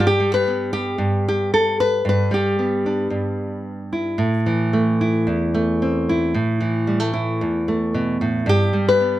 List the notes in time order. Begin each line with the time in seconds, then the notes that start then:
Already playing: G2
0.07 G4
0.20 G3
0.34 B4
0.47 B3
0.73 G4
0.98 G2
1.29 G4
1.54 A4
1.80 B4
2.05 G2
2.09 B4
2.31 G3 G4
2.59 B3
2.86 D4
3.10 G2
3.93 E4
4.18 A2
4.46 E3
4.73 A3
5.01 E4
5.27 E2
5.54 A3
5.82 C4
6.09 E4
6.34 A2
6.61 E3
6.87 G3
7.00 A3
7.13 E4
7.41 E2
7.68 A3
7.94 B2
8.21 A2
8.46 G2 G4
8.73 G3
8.89 B4
9.01 B3